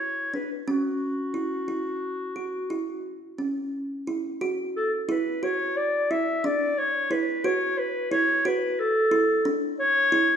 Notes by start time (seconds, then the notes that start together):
Already playing: C#5
0.34 D4 B4
0.68 C#4 F#4
1.34 E4
1.68 E4
2.36 F#4
2.70 E4
3.38 C#4
4.07 E4
4.41 F#4
4.77 A4
5.09 E4 B4
5.43 F#4 C#5
5.77 D5
6.11 E4 E5
6.44 D4 D5
6.78 C#5
7.11 E4 B4
7.44 F#4 C#5
7.78 B4
8.12 E4 C#5
8.45 F#4 B4
8.80 A4
9.11 E4
9.45 D4
9.80 C#5
10.12 E4